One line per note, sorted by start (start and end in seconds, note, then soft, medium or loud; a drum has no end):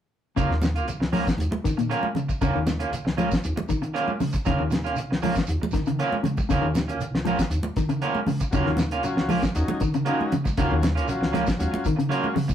0.36 0.49 D#2 medium
0.36 0.44 C#3 medium
0.36 0.53 F#3 medium
0.36 0.53 A#3 medium
0.36 0.53 F4 medium
0.36 muted clean electric guitar stroke medium
0.36 kick medium
0.36 closed hi-hat medium
0.36 shekere medium
0.49 0.88 D#2 medium
0.49 muted clean electric guitar stroke medium
0.49 snare soft
0.62 muted clean electric guitar stroke soft
0.62 snare medium
0.62 closed hi-hat soft
0.62 high conga medium
0.62 shekere medium
0.75 0.87 A#3 soft
0.75 0.87 F4 medium
0.75 closed hi-hat soft
0.75 shekere soft
0.88 1.00 A#1 medium
0.88 muted clean electric guitar stroke soft
0.88 closed hi-hat medium
0.88 shekere medium
1.00 1.23 C#2 medium
1.00 muted clean electric guitar stroke soft
1.00 snare medium
1.12 1.27 F3 medium
1.12 1.26 F#3 medium
1.12 1.25 A#3 medium
1.12 1.25 C#4 medium
1.12 1.25 F4 medium
1.12 open hi-hat medium
1.12 high conga medium
1.12 low conga medium
1.12 shekere soft
1.26 muted clean electric guitar stroke soft
1.26 kick medium
1.26 snare medium
1.26 closed hi-hat soft
1.26 shekere medium
1.38 1.50 D#2 medium
1.38 closed hi-hat medium
1.38 high conga medium
1.38 shekere medium
1.51 muted clean electric guitar stroke soft
1.51 muted upright bass stroke soft
1.51 high conga medium
1.64 1.72 D#3 medium
1.64 1.87 D#3 medium
1.64 kick medium
1.64 snare soft
1.64 closed hi-hat medium
1.64 shekere medium
1.77 1.92 A#2 medium
1.77 muted clean electric guitar stroke soft
1.77 closed hi-hat soft
1.77 shekere soft
1.90 2.06 F#3 medium
1.90 2.06 A#3 medium
1.90 2.06 C#4 medium
1.90 2.06 F4 medium
1.90 closed hi-hat medium
2.03 high conga medium
2.15 2.30 C#3 medium
2.15 muted clean electric guitar stroke soft
2.15 closed hi-hat soft
2.15 low conga medium
2.15 shekere soft
2.29 muted clean electric guitar stroke soft
2.29 kick medium
2.29 shekere medium
2.41 2.53 D#2 medium
2.41 2.49 C#3 medium
2.41 2.57 F#3 medium
2.41 2.57 A#3 medium
2.41 2.58 C#4 medium
2.41 2.58 F4 medium
2.41 kick medium
2.41 closed hi-hat medium
2.41 shekere medium
2.55 2.92 D#2 medium
2.55 2.69 D#3 medium
2.67 muted clean electric guitar stroke soft
2.67 snare medium
2.67 closed hi-hat soft
2.67 high conga medium
2.67 shekere medium
2.79 2.90 A#3 soft
2.79 2.91 C#4 soft
2.79 2.91 F4 soft
2.79 closed hi-hat soft
2.79 shekere soft
2.92 3.06 A#1 medium
2.92 muted clean electric guitar stroke soft
2.92 closed hi-hat medium
2.92 shekere medium
3.05 3.28 C#2 medium
3.05 muted clean electric guitar stroke soft
3.05 snare medium
3.17 3.32 F3 medium
3.17 3.31 F#3 medium
3.17 3.29 A#3 medium
3.17 3.29 C#4 medium
3.17 3.29 F4 medium
3.17 closed hi-hat soft
3.17 high conga medium
3.17 low conga medium
3.17 shekere soft
3.30 muted clean electric guitar stroke soft
3.30 kick medium
3.30 snare medium
3.30 closed hi-hat soft
3.30 shekere medium
3.44 3.56 D#2 medium
3.44 closed hi-hat medium
3.44 shekere medium
3.56 muted clean electric guitar stroke soft
3.56 muted upright bass stroke soft
3.56 high conga medium
3.56 low conga medium
3.69 3.76 D#3 medium
3.69 3.91 D#3 medium
3.69 kick medium
3.69 closed hi-hat soft
3.69 shekere medium
3.82 muted clean electric guitar stroke soft
3.82 closed hi-hat soft
3.82 shekere soft
3.94 4.10 F#3 medium
3.94 4.10 A#3 medium
3.94 4.10 C#4 medium
3.94 4.10 F4 medium
3.94 closed hi-hat medium
4.08 high conga medium
4.20 4.35 C#3 medium
4.20 muted clean electric guitar stroke soft
4.20 open hi-hat medium
4.20 high conga medium
4.20 low conga medium
4.20 shekere soft
4.33 muted clean electric guitar stroke soft
4.33 kick medium
4.33 closed hi-hat soft
4.33 shekere medium
4.45 4.58 D#2 medium
4.45 4.54 C#3 medium
4.45 4.61 F#3 medium
4.45 4.62 A#3 medium
4.45 4.62 C#4 medium
4.45 4.62 F4 medium
4.45 kick medium
4.45 snare soft
4.45 closed hi-hat medium
4.45 shekere medium
4.58 4.97 D#2 medium
4.58 4.74 D#3 medium
4.70 muted clean electric guitar stroke soft
4.70 snare medium
4.70 closed hi-hat soft
4.70 high conga medium
4.70 shekere medium
4.83 4.95 A#3 soft
4.83 4.96 C#4 medium
4.83 4.96 F4 medium
4.83 closed hi-hat soft
4.83 shekere soft
4.96 5.11 A#1 medium
4.96 muted clean electric guitar stroke soft
4.96 closed hi-hat medium
4.96 shekere medium
5.11 5.32 C#2 medium
5.11 muted clean electric guitar stroke soft
5.11 snare medium
5.21 5.37 F3 medium
5.21 5.36 F#3 medium
5.21 5.35 A#3 medium
5.21 5.35 C#4 medium
5.21 5.35 F4 medium
5.21 open hi-hat medium
5.21 high conga medium
5.21 low conga medium
5.21 shekere soft
5.35 muted clean electric guitar stroke soft
5.35 kick medium
5.35 snare medium
5.35 closed hi-hat medium
5.35 shekere medium
5.47 5.59 D#2 medium
5.47 closed hi-hat medium
5.47 shekere medium
5.61 muted upright bass stroke soft
5.61 muted clean electric guitar stroke soft
5.61 high conga medium
5.61 low conga medium
5.71 5.81 D#3 medium
5.71 5.96 D#3 medium
5.71 kick medium
5.71 snare soft
5.71 closed hi-hat medium
5.71 shekere medium
5.86 6.01 C#3 medium
5.86 muted clean electric guitar stroke soft
5.86 closed hi-hat soft
5.86 shekere soft
5.99 6.15 F#3 medium
5.99 6.15 A#3 medium
5.99 6.15 C#4 medium
5.99 6.15 F4 medium
5.99 closed hi-hat medium
6.12 high conga medium
6.23 6.38 C#3 medium
6.23 muted clean electric guitar stroke soft
6.23 closed hi-hat soft
6.23 high conga medium
6.23 low conga medium
6.23 shekere soft
6.37 muted clean electric guitar stroke soft
6.37 kick medium
6.37 high conga medium
6.37 shekere medium
6.49 6.61 D#2 medium
6.49 6.57 C#3 medium
6.49 6.66 F#3 medium
6.49 6.66 A#3 medium
6.49 6.66 C#4 medium
6.49 6.66 F4 medium
6.49 kick medium
6.49 closed hi-hat medium
6.49 shekere medium
6.62 6.99 D#2 medium
6.62 6.76 D#3 medium
6.75 muted clean electric guitar stroke soft
6.75 snare medium
6.75 closed hi-hat soft
6.75 high conga medium
6.75 shekere medium
6.88 7.00 A#3 soft
6.88 7.01 C#4 soft
6.88 muted clean electric guitar stroke medium
6.88 closed hi-hat soft
6.88 shekere soft
6.99 7.12 A#1 medium
6.99 muted clean electric guitar stroke soft
6.99 closed hi-hat medium
6.99 shekere medium
7.12 7.35 C#2 medium
7.12 muted clean electric guitar stroke soft
7.12 snare medium
7.25 7.39 F3 medium
7.25 7.40 F#3 medium
7.25 7.39 A#3 medium
7.25 7.38 C#4 medium
7.25 7.38 F4 medium
7.25 closed hi-hat soft
7.25 high conga medium
7.25 low conga medium
7.25 shekere soft
7.39 muted clean electric guitar stroke soft
7.39 kick medium
7.39 snare medium
7.39 closed hi-hat medium
7.39 shekere medium
7.50 7.62 D#2 medium
7.50 closed hi-hat medium
7.50 shekere medium
7.63 muted clean electric guitar stroke soft
7.63 muted upright bass stroke soft
7.63 high conga medium
7.76 7.99 D#3 medium
7.76 7.84 D#3 medium
7.76 kick medium
7.76 snare soft
7.76 closed hi-hat soft
7.76 shekere medium
7.89 8.04 C#3 medium
7.89 muted clean electric guitar stroke soft
7.89 closed hi-hat soft
7.89 shekere soft
8.02 8.18 F#3 medium
8.02 8.18 A#3 medium
8.02 8.18 C#4 medium
8.02 8.18 F4 medium
8.02 closed hi-hat medium
8.15 high conga medium
8.27 8.42 C#3 medium
8.27 muted clean electric guitar stroke soft
8.27 open hi-hat medium
8.27 high conga medium
8.27 low conga medium
8.27 shekere soft
8.40 muted clean electric guitar stroke soft
8.40 kick medium
8.40 closed hi-hat soft
8.40 shekere medium
8.51 8.65 D#2 medium
8.51 8.61 C#3 medium
8.51 8.79 F#3 medium
8.51 8.69 F#3 medium
8.51 8.70 A#3 medium
8.51 8.80 C#4 medium
8.51 8.70 C#4 medium
8.51 8.80 F4 medium
8.51 8.70 F4 medium
8.51 kick medium
8.51 closed hi-hat medium
8.51 shekere medium
8.66 9.04 D#2 medium
8.66 8.81 D#3 medium
8.66 snare soft
8.77 muted clean electric guitar stroke soft
8.77 snare medium
8.77 closed hi-hat soft
8.77 high conga medium
8.77 shekere medium
8.91 9.03 A#3 soft
8.91 9.03 C#4 soft
8.91 9.03 F4 medium
8.91 closed hi-hat soft
8.91 shekere soft
9.03 9.18 A#1 medium
9.03 9.31 F#3 medium
9.03 9.31 C#4 medium
9.03 9.31 F4 loud
9.03 muted clean electric guitar stroke soft
9.03 closed hi-hat medium
9.03 shekere medium
9.17 9.40 C#2 medium
9.17 muted clean electric guitar stroke soft
9.17 snare medium
9.29 9.45 F3 medium
9.29 9.42 A#3 medium
9.29 9.42 C#4 medium
9.29 9.42 F4 medium
9.29 muted clean electric guitar stroke medium
9.29 open hi-hat medium
9.29 high conga medium
9.29 low conga medium
9.29 shekere soft
9.42 muted clean electric guitar stroke soft
9.42 kick medium
9.42 snare medium
9.42 closed hi-hat soft
9.42 shekere medium
9.55 9.67 D#2 medium
9.55 9.82 F#3 medium
9.55 9.83 C#4 medium
9.55 9.83 D#4 medium
9.55 closed hi-hat medium
9.55 shekere medium
9.68 muted upright bass stroke soft
9.68 muted clean electric guitar stroke medium
9.68 high conga medium
9.68 low conga medium
9.80 10.03 D#3 medium
9.80 9.88 D#3 medium
9.80 kick medium
9.80 closed hi-hat soft
9.80 shekere medium
9.94 10.09 C#3 medium
9.94 muted clean electric guitar stroke soft
9.94 closed hi-hat soft
9.94 shekere soft
10.05 10.22 F#3 medium
10.05 10.34 F#3 medium
10.05 10.22 A#3 medium
10.05 10.22 C#4 medium
10.05 10.34 C#4 medium
10.05 10.34 D#4 medium
10.05 10.22 F4 medium
10.05 closed hi-hat medium
10.21 high conga medium
10.31 10.47 C#3 medium
10.31 muted clean electric guitar stroke soft
10.31 closed hi-hat medium
10.31 low conga medium
10.31 shekere soft
10.44 muted clean electric guitar stroke soft
10.44 kick medium
10.44 snare soft
10.44 high conga medium
10.44 shekere medium
10.57 10.69 D#2 medium
10.57 10.65 C#3 medium
10.57 10.85 F#3 medium
10.57 10.73 F#3 medium
10.57 10.73 A#3 medium
10.57 10.73 C#4 medium
10.57 10.85 C#4 medium
10.57 10.74 F4 medium
10.57 10.86 F4 medium
10.57 kick medium
10.57 closed hi-hat medium
10.57 shekere medium
10.71 11.08 D#2 medium
10.71 10.86 D#3 medium
10.83 muted clean electric guitar stroke soft
10.83 snare medium
10.83 closed hi-hat medium
10.83 high conga medium
10.83 shekere medium
10.95 11.07 A#3 soft
10.95 11.07 C#4 soft
10.95 11.08 F4 medium
10.95 closed hi-hat medium
10.95 shekere soft
11.08 11.22 A#1 medium
11.08 11.35 F#3 medium
11.08 11.35 C#4 medium
11.08 11.36 F4 medium
11.08 muted clean electric guitar stroke soft
11.08 closed hi-hat medium
11.08 shekere medium
11.21 11.44 C#2 medium
11.21 muted clean electric guitar stroke soft
11.21 snare medium
11.32 11.49 F3 medium
11.32 11.46 F#3 medium
11.32 11.46 A#3 medium
11.32 11.46 C#4 medium
11.32 11.45 F4 medium
11.32 snare soft
11.32 closed hi-hat soft
11.32 high conga medium
11.32 low conga medium
11.32 shekere soft
11.46 muted clean electric guitar stroke soft
11.46 kick medium
11.46 snare medium
11.46 closed hi-hat soft
11.46 shekere medium
11.58 11.71 D#2 medium
11.58 11.86 F#3 medium
11.58 11.87 C#4 medium
11.58 11.87 F4 medium
11.58 closed hi-hat medium
11.58 high conga medium
11.58 shekere medium
11.72 muted clean electric guitar stroke soft
11.72 muted upright bass stroke soft
11.72 high conga medium
11.85 12.07 D#3 medium
11.85 11.93 D#3 medium
11.85 kick medium
11.85 closed hi-hat soft
11.85 shekere medium
11.96 12.13 C#3 medium
11.96 muted clean electric guitar stroke soft
11.96 closed hi-hat soft
11.96 shekere soft
12.09 12.26 F#3 medium
12.09 12.37 F#3 medium
12.09 12.26 A#3 medium
12.09 12.26 C#4 medium
12.09 12.37 C#4 medium
12.09 12.26 F4 loud
12.09 12.38 F4 medium
12.09 closed hi-hat medium
12.24 high conga medium
12.34 12.50 C#3 medium
12.34 muted clean electric guitar stroke soft
12.34 open hi-hat medium
12.34 low conga medium
12.34 shekere soft
12.48 muted clean electric guitar stroke soft
12.48 kick medium
12.48 closed hi-hat soft
12.48 high conga medium
12.48 shekere medium